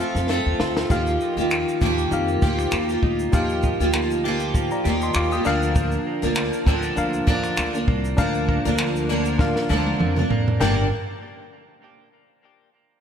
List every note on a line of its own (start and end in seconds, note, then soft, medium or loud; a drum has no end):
0.00 0.28 F3 medium
0.00 0.29 A3 medium
0.00 0.29 C4 medium
0.00 0.92 C4 medium
0.00 0.98 C4 medium
0.00 0.60 F4 medium
0.00 0.93 F4 medium
0.00 0.29 F4 medium
0.00 0.92 A4 medium
0.00 0.30 A4 medium
0.00 0.92 F5 medium
0.00 shaker medium
0.15 0.40 F2 medium
0.15 snare soft
0.15 shaker medium
0.29 0.89 F3 medium
0.29 0.97 A3 medium
0.29 0.90 C4 medium
0.29 0.91 F4 medium
0.29 0.91 A4 medium
0.29 snare medium
0.46 0.58 D#2 medium
0.59 0.84 D2 medium
0.59 1.25 F4 medium
0.59 snare medium
0.77 snare medium
0.90 1.15 D#2 loud
0.90 1.37 F3 medium
0.90 3.33 F3 medium
0.90 1.37 A#3 medium
0.90 1.90 D#4 medium
0.90 1.36 F4 medium
0.90 1.90 G4 medium
0.90 1.36 G4 medium
0.90 1.91 F5 medium
0.90 kick loud
0.90 shaker medium
1.07 shaker soft
1.21 3.02 D#4 medium
1.21 shaker medium
1.37 1.62 D#2 medium
1.37 1.81 D#3 medium
1.37 1.81 F3 medium
1.37 1.81 A#3 medium
1.37 1.82 F4 medium
1.37 1.81 G4 medium
1.37 shaker medium
1.50 2.12 A#3 medium
1.50 finger snap loud
1.50 shaker medium
1.69 shaker soft
1.81 2.06 D#2 medium
1.81 2.43 D#3 medium
1.81 2.42 F3 medium
1.81 2.43 A#3 medium
1.81 2.43 F4 medium
1.81 2.41 G4 medium
1.81 2.43 G4 medium
1.81 kick medium
1.81 shaker soft
1.98 shaker soft
2.11 2.36 F2 medium
2.11 2.72 A#3 medium
2.11 3.11 D#4 medium
2.11 3.12 G4 medium
2.11 3.12 F5 medium
2.11 shaker medium
2.28 shaker soft
2.42 2.67 D2 medium
2.42 2.89 F3 medium
2.42 2.90 A#3 medium
2.42 2.89 F4 medium
2.42 4.23 G4 medium
2.42 2.87 G4 medium
2.42 kick medium
2.42 shaker soft
2.59 finger snap soft
2.59 shaker medium
2.71 2.97 D#2 medium
2.71 3.93 A#3 medium
2.71 finger snap loud
2.71 shaker medium
2.89 3.32 A#3 soft
2.89 3.33 F4 medium
2.89 3.33 G4 medium
2.89 shaker soft
3.03 3.28 D2 medium
3.03 3.62 D#4 medium
3.03 kick medium
3.19 shaker soft
3.32 3.72 D#2 medium
3.32 3.80 F3 medium
3.32 5.46 F3 medium
3.32 3.80 A#3 medium
3.32 4.32 D#4 medium
3.32 3.80 F4 medium
3.32 4.33 G4 medium
3.32 3.79 G4 medium
3.32 4.33 F5 medium
3.32 kick loud
3.32 shaker medium
3.49 shaker soft
3.63 5.52 D#4 medium
3.63 kick medium
3.63 shaker medium
3.80 4.67 D2 medium
3.80 4.24 F3 medium
3.80 4.24 A#3 medium
3.80 4.25 F4 medium
3.80 4.24 G4 medium
3.80 shaker medium
3.93 4.54 A#3 medium
3.93 finger snap loud
3.93 shaker medium
4.11 shaker soft
4.24 4.86 F3 medium
4.24 4.86 A#3 medium
4.24 4.86 F4 medium
4.24 4.83 G4 medium
4.24 4.86 G4 medium
4.40 shaker medium
4.55 5.15 A#3 medium
4.55 kick medium
4.55 shaker medium
4.71 5.01 D5 medium
4.71 5.00 A#5 medium
4.71 shaker soft
4.84 5.10 D#2 loud
4.84 5.32 D#3 medium
4.84 5.33 F3 medium
4.84 5.33 A#3 medium
4.84 5.32 F4 medium
4.84 5.52 G4 medium
4.84 5.30 G4 medium
4.84 shaker soft
5.01 5.16 D#5 medium
5.01 5.15 C6 medium
5.01 shaker medium
5.14 5.40 D#2 medium
5.14 6.06 A#3 medium
5.14 5.32 F5 medium
5.14 5.32 D6 medium
5.14 finger snap loud
5.14 shaker medium
5.31 5.45 A#3 soft
5.31 5.46 F4 medium
5.31 5.45 G4 medium
5.31 5.61 G5 soft
5.31 5.61 D#6 medium
5.31 shaker soft
5.45 5.95 D2 medium
5.45 6.24 D3 medium
5.45 6.22 F3 medium
5.45 5.74 F3 medium
5.45 6.23 A#3 medium
5.45 6.45 D4 medium
5.45 6.22 D4 medium
5.45 6.45 A#4 medium
5.45 6.22 A#4 medium
5.45 6.46 F5 loud
5.45 shaker medium
5.62 shaker medium
5.75 6.35 F3 medium
5.75 kick loud
5.75 shaker medium
5.92 shaker soft
6.07 7.87 A#3 medium
6.22 6.48 D2 medium
6.22 6.66 D3 medium
6.22 6.66 F3 medium
6.22 6.67 A#3 medium
6.22 6.67 D4 medium
6.22 6.67 A#4 medium
6.22 shaker medium
6.35 6.96 F3 medium
6.35 finger snap loud
6.35 shaker medium
6.53 shaker soft
6.66 6.91 D2 loud
6.66 7.26 D3 medium
6.66 7.26 F3 medium
6.66 7.27 A#3 medium
6.66 6.84 C4 medium
6.66 7.28 D4 medium
6.66 7.28 A#4 medium
6.66 kick medium
6.82 7.26 D4 medium
6.82 shaker medium
6.96 7.22 D2 medium
6.96 7.56 F3 medium
6.96 7.96 D4 medium
6.96 7.97 A#4 medium
6.96 7.97 F5 medium
6.96 shaker medium
7.13 shaker soft
7.27 7.52 D#2 medium
7.27 7.74 D3 medium
7.27 7.74 F3 medium
7.27 7.74 A#3 medium
7.27 9.09 D4 medium
7.27 7.73 D4 medium
7.27 7.72 A#4 medium
7.27 kick medium
7.44 finger snap soft
7.44 shaker medium
7.57 7.83 D2 medium
7.57 8.17 F3 medium
7.57 finger snap loud
7.57 shaker medium
7.73 8.17 A#3 soft
7.73 8.18 D4 soft
7.73 8.18 A#4 medium
7.73 shaker soft
7.88 8.13 C2 medium
7.88 8.48 A#3 medium
7.88 kick medium
8.05 shaker soft
8.17 8.57 D2 loud
8.17 8.65 F3 medium
8.17 8.78 F3 medium
8.17 8.65 A#3 medium
8.17 9.17 D4 medium
8.17 8.64 D4 medium
8.17 9.18 A#4 medium
8.17 8.64 A#4 medium
8.17 9.18 F5 medium
8.17 kick loud
8.17 shaker medium
8.34 shaker soft
8.48 10.30 A#3 medium
8.48 kick medium
8.65 9.52 D2 medium
8.65 9.08 D3 medium
8.65 9.08 F3 medium
8.65 9.09 A#3 medium
8.65 9.09 D4 medium
8.65 9.09 A#4 medium
8.65 shaker medium
8.78 9.38 F3 medium
8.78 finger snap loud
8.78 shaker medium
8.96 shaker soft
9.09 9.69 D3 medium
9.09 9.69 F3 medium
9.09 9.70 A#3 medium
9.09 9.69 D4 medium
9.09 9.70 D4 medium
9.09 9.70 A#4 medium
9.25 shaker medium
9.39 9.98 F3 medium
9.39 10.39 D4 medium
9.39 10.39 A#4 medium
9.39 10.40 F5 medium
9.39 kick medium
9.39 snare medium
9.56 snare medium
9.69 9.95 D2 loud
9.69 10.16 D3 medium
9.69 10.17 F3 medium
9.69 10.17 A#3 medium
9.69 10.61 D4 medium
9.69 10.17 D4 medium
9.69 10.15 A#4 medium
9.69 high tom medium
9.87 high tom medium
9.99 10.25 F2 medium
9.99 10.67 F3 medium
9.99 mid tom medium
10.16 10.60 A#3 soft
10.16 10.61 D4 medium
10.16 10.60 A#4 medium
10.16 mid tom medium
10.30 10.55 F2 medium
10.30 10.59 A#3 medium
10.30 floor tom loud
10.48 floor tom medium
10.60 10.89 G1 medium
10.60 10.85 G2 medium
10.60 10.86 D3 medium
10.60 10.86 G3 medium
10.60 10.85 A#3 medium
10.60 10.86 A#3 medium
10.60 10.89 D4 medium
10.60 10.86 D4 medium
10.60 10.86 G4 medium
10.60 10.89 A#4 medium
10.60 10.86 A#4 medium
10.60 10.89 G5 medium
10.60 snare medium
10.60 floor tom loud
10.60 crash medium